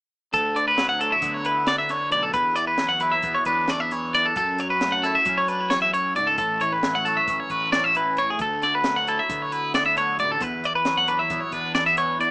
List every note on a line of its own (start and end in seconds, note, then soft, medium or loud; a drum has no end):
0.33 2.10 D2 medium
0.33 1.13 D2 medium
0.33 0.56 A4 medium
0.33 kick loud
0.33 closed hi-hat medium
0.55 1.89 D3 medium
0.55 0.67 D5 medium
0.55 closed hi-hat medium
0.68 0.88 B4 medium
0.77 2.79 F#3 medium
0.77 snare loud
0.77 closed hi-hat medium
0.89 1.00 F#5 medium
0.99 1.10 D4 medium
0.99 1.12 A4 medium
0.99 closed hi-hat medium
1.10 1.43 E4 soft
1.10 1.34 E5 medium
1.21 2.12 D3 medium
1.21 1.67 B3 medium
1.21 kick loud
1.21 closed hi-hat medium
1.34 1.45 C#5 medium
1.44 2.82 E4 medium
1.44 1.68 B4 medium
1.44 closed hi-hat medium
1.67 2.32 B3 soft
1.67 1.78 D5 medium
1.67 snare medium
1.67 closed hi-hat medium
1.78 1.90 E5 medium
1.89 2.56 D3 medium
1.89 2.12 C#5 medium
1.89 snare soft
1.89 closed hi-hat medium
2.11 2.31 B1 medium
2.11 2.34 D2 medium
2.11 2.24 D5 medium
2.11 closed hi-hat medium
2.23 2.33 A4 medium
2.33 3.14 E2 loud
2.33 4.13 E2 medium
2.33 2.56 B4 medium
2.33 kick loud
2.33 closed hi-hat medium
2.56 3.92 E3 medium
2.56 2.67 D5 medium
2.56 closed hi-hat medium
2.67 2.90 B4 medium
2.78 4.59 F#3 medium
2.78 snare medium
2.78 closed hi-hat medium
2.89 3.01 F#5 medium
3.00 3.47 E4 medium
3.00 3.13 B4 medium
3.00 closed hi-hat medium
3.12 3.35 E5 medium
3.22 3.34 E2 medium
3.22 3.69 B3 medium
3.22 kick loud
3.22 closed hi-hat medium
3.34 3.46 C#5 medium
3.45 4.26 E2 medium
3.45 4.37 D4 medium
3.45 3.70 B4 medium
3.45 kick medium
3.45 closed hi-hat medium
3.68 3.81 A3 medium
3.68 3.80 D5 medium
3.68 snare medium
3.68 closed hi-hat medium
3.80 4.37 B3 soft
3.80 3.92 E5 medium
3.91 4.40 E3 medium
3.91 4.14 C#5 medium
3.91 closed hi-hat medium
4.14 4.34 E2 medium
4.14 4.26 D5 medium
4.14 closed hi-hat medium
4.26 4.36 A4 medium
4.36 5.16 F#2 loud
4.36 5.71 F#2 medium
4.36 4.60 A4 medium
4.36 kick loud
4.36 closed hi-hat medium
4.58 6.61 F#3 medium
4.58 4.70 C#5 medium
4.58 closed hi-hat medium
4.70 4.93 B4 medium
4.81 6.84 A3 medium
4.81 snare medium
4.81 closed hi-hat medium
4.92 5.04 F#5 medium
5.03 5.49 E4 medium
5.03 5.15 A4 medium
5.03 snare soft
5.03 closed hi-hat medium
5.15 5.37 E5 medium
5.25 6.17 F#3 medium
5.25 6.37 C#4 medium
5.25 kick loud
5.25 closed hi-hat medium
5.38 5.48 C#5 medium
5.48 5.60 D4 medium
5.48 5.71 B4 medium
5.48 closed hi-hat medium
5.60 6.38 E4 soft
5.70 5.93 E2 medium
5.70 5.81 C#5 medium
5.70 snare medium
5.70 closed hi-hat medium
5.82 5.93 E5 medium
5.93 6.16 F#2 medium
5.93 6.16 C#5 medium
5.93 closed hi-hat medium
6.16 6.36 C#2 medium
6.16 6.38 G#2 medium
6.16 6.27 D5 medium
6.16 closed hi-hat medium
6.27 6.37 A4 medium
6.38 7.18 A1 medium
6.38 8.17 A2 medium
6.38 6.61 A4 medium
6.38 kick loud
6.38 closed hi-hat medium
6.61 7.95 E3 medium
6.61 6.72 C#5 medium
6.61 closed hi-hat medium
6.73 6.95 B4 medium
6.83 8.85 F#3 soft
6.83 snare loud
6.83 closed hi-hat medium
6.95 7.06 F#5 medium
7.05 7.51 F#4 medium
7.05 7.16 A4 medium
7.05 closed hi-hat medium
7.17 7.40 E5 medium
7.28 7.38 A1 medium
7.28 7.73 C#4 medium
7.28 kick loud
7.28 closed hi-hat medium
7.40 7.51 C#5 medium
7.50 8.29 A1 medium
7.50 9.08 F#4 medium
7.50 7.72 B4 medium
7.50 kick medium
7.50 closed hi-hat soft
7.72 8.38 C#4 medium
7.72 7.84 D5 medium
7.72 snare loud
7.72 closed hi-hat medium
7.84 7.95 E5 medium
7.95 8.43 E3 medium
7.95 8.18 B4 medium
7.95 closed hi-hat medium
8.17 8.40 A2 medium
8.17 8.29 C#5 medium
8.17 closed hi-hat medium
8.30 8.41 G#4 medium
8.39 9.19 D2 medium
8.39 10.18 D2 medium
8.39 8.63 A4 medium
8.39 kick loud
8.39 closed hi-hat medium
8.62 9.95 D3 medium
8.62 8.74 D5 medium
8.62 snare soft
8.62 closed hi-hat medium
8.75 8.96 B4 medium
8.84 10.87 F#3 medium
8.84 snare loud
8.84 closed hi-hat medium
8.96 9.07 F#5 medium
9.07 9.52 E4 medium
9.07 9.19 A4 medium
9.07 closed hi-hat medium
9.19 9.42 E5 medium
9.29 10.19 D3 medium
9.29 9.74 B3 soft
9.29 kick loud
9.29 closed hi-hat medium
9.42 9.52 C#5 medium
9.52 10.90 E4 medium
9.52 9.74 B4 medium
9.52 closed hi-hat medium
9.74 10.39 B3 medium
9.74 9.85 D5 medium
9.74 snare loud
9.74 closed hi-hat medium
9.86 9.97 E5 medium
9.96 10.63 D3 medium
9.96 10.19 C#5 medium
9.96 closed hi-hat medium
10.18 10.38 A1 medium
10.18 10.40 D2 medium
10.18 10.30 D5 medium
10.18 closed hi-hat medium
10.32 10.42 A4 medium
10.40 12.18 E2 medium
10.40 11.20 E2 medium
10.40 10.65 B4 medium
10.40 kick loud
10.40 closed hi-hat medium
10.64 11.97 E3 medium
10.64 10.75 D5 medium
10.64 closed hi-hat medium
10.75 10.97 B4 medium
10.85 12.31 F#3 medium
10.85 snare medium
10.85 closed hi-hat medium
10.97 11.09 F#5 medium
11.08 11.19 D4 medium
11.08 11.19 B4 medium
11.08 closed hi-hat medium
11.19 11.53 E4 soft
11.19 11.40 E5 medium
11.30 11.40 E2 medium
11.30 11.73 B3 medium
11.30 kick loud
11.30 closed hi-hat medium
11.40 11.53 C#5 medium
11.52 12.31 E2 medium
11.52 12.31 D4 medium
11.52 11.74 B4 medium
11.52 kick medium
11.52 closed hi-hat medium
11.74 12.31 B3 medium
11.74 11.86 D5 medium
11.74 snare loud
11.74 closed hi-hat medium
11.86 11.98 E5 medium
11.97 12.31 E3 medium
11.97 12.20 C#5 medium
11.97 closed hi-hat medium
12.19 12.31 E2 medium
12.19 12.31 D5 medium
12.19 closed hi-hat medium